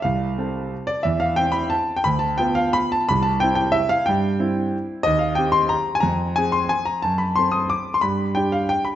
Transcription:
\new Staff \with { instrumentName = "Grand piano" } { \time 3/4 \key c \major \tempo 4 = 180 << { f''2 r8 d''8 | e''8 f''8 g''8 b''8 a''8. g''16 | b''8 a''8 g''8 f''8 b''8 a''8 | b''8 a''8 g''8 g''8 e''8 f''8 |
g''2 r4 | \key c \minor ees''8 f''8 g''8 c'''8 bes''8. aes''16 | bes''4 aes''8 c'''8 aes''8 bes''8 | a''8 b''8 c'''8 ees'''8 d'''8. c'''16 |
b''4 g''8 f''8 g''8 b''8 | } \\ { c,4 <c' a'>2 | e,4 <c' e'>2 | d,4 <b f'>2 | c,4 <c' e'>2 |
g,4 <c' e'>2 | ees,4 <c' g'>2 | f,4 <c' aes'>2 | fis,4 <c' a'>2 |
g,4 <d' g'>2 | } >> }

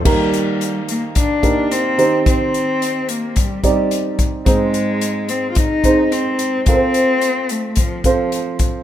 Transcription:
<<
  \new Staff \with { instrumentName = "Upright piano" } { \time 4/4 \key ees \major \tempo 4 = 109 <bes ees' g' bes'>4.~ <bes ees' g' bes'>16 r8. <bes ees' g' bes'>4 <c' ees' g' c''>8~ | <c' ees' g' c''>4~ <c' ees' g' c''>16 r4 r16 <c' ees' g' d''>4. | <c' ees' aes' c''>4.~ <c' ees' aes' c''>16 r8. <c' ees' aes' c''>4. | <c' f' a' bes' c''>4.~ <c' f' a' bes' c''>16 r8. <c' f' a' c''>4. | }
  \new Staff \with { instrumentName = "Upright piano" } { \clef bass \time 4/4 \key ees \major ees4. r2 ees8~ | ees4 r2. | aes,4. r2 r8 | r1 | }
  \new Staff \with { instrumentName = "Cello" } { \time 4/4 \key ees \major g4. bes8 d'4 c'4 | c'4. bes8 g8 g4 r8 | aes4. c'16. f'32 ees'4 c'4 | c'4. a8 f8 f4 r8 | }
  \new DrumStaff \with { instrumentName = "Drums" } \drummode { \time 4/4 <cymc bd>8 hh8 hh8 hh8 <hh bd>8 <hh bd>8 hh8 hh8 | <hh bd>8 hh8 hh8 hh8 <hh bd>8 <hh bd>8 hh8 <hh bd>8 | <hh bd>8 hh8 hh8 hh8 <hh bd>8 <hh bd>8 hh8 hh8 | <hh bd>8 hh8 hh8 hh8 <hh bd>8 <hh bd>8 hh8 <hh bd>8 | }
>>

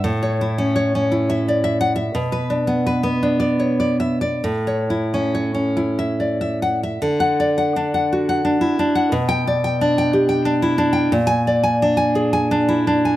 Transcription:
\new Staff \with { instrumentName = "Nylon-string guitar" } { \time 3/4 \key d \major \tempo 4 = 86 << { r2 r8 fis''16 r16 | r2 r8 e''16 r16 | r2 r8 fis''16 r16 | r16 fis''8 r2 r16 |
r16 g''8 r2 r16 | r16 aes''8 r2 r16 | } \\ { a,16 cis''16 e'16 cis'16 cis''16 cis'16 e'16 e''16 d''16 e''8 e''16 | b,16 b'16 d'16 b16 b'16 b16 d'16 d''16 cis''16 d''8 d''16 | a,16 cis''16 e'16 cis'16 cis''16 cis'16 e'16 e''16 d''16 e''8 e''16 | d8 d''16 fis''16 d'16 fis''16 fis'16 fis''16 d'16 e'16 d'16 fis''16 |
b,8 d''16 g''16 d'16 g''16 g'16 g''16 d'16 e'16 d'16 g''16 | bes,8 d''16 aes''16 d'16 aes''16 aes'16 aes''16 d'16 e'16 d'16 aes''16 | } >> }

